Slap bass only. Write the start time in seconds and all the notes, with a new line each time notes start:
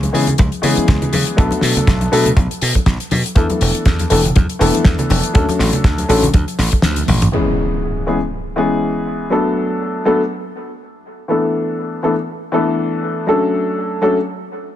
0.14 C#3
0.39 C#2
0.63 C#3
0.77 muted slap bass stroke
0.88 C#2
1.13 C#3
1.38 B1
1.63 B2
1.77 muted slap bass stroke
1.87 B1
2.13 B2
2.37 B1
2.62 B2
2.75 muted slap bass stroke
2.86 B1
3.12 B2
3.36 E2
3.61 E1
3.86 E2
4.11 E1
4.36 E2
4.61 E1
4.85 E2
5.10 E1
5.35 D2
5.60 A1
5.84 D2
6.09 A1
6.34 D2
6.59 A1
6.84 D2
7.08 A1